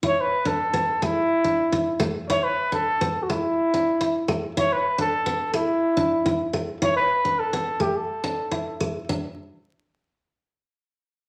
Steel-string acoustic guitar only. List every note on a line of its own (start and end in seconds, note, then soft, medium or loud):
0.03 0.27 E4 medium
0.45 0.69 D4 medium
0.73 0.97 B3 medium
1.02 1.26 A3 medium
1.44 1.68 D4 medium
1.72 1.96 E4 medium
2.00 2.24 A3 medium
2.30 2.53 E4 medium
2.72 2.95 D4 medium
3.01 3.24 B3 medium
3.30 3.53 A3 medium
3.74 3.96 D4 medium
4.01 4.23 E4 medium
4.28 4.51 A3 medium
4.57 4.80 E4 medium
4.98 5.22 D4 medium
5.26 5.50 B3 medium
5.54 5.78 A3 medium
5.97 6.20 D4 medium
6.26 6.49 E4 medium
6.53 6.77 A3 medium
6.82 7.05 E4 medium
7.25 7.48 D4 medium
7.53 7.76 B3 medium
7.80 8.04 A3 medium
8.24 8.47 D4 medium
8.51 8.75 E4 medium
8.80 9.04 A3 medium
9.09 9.26 D4 medium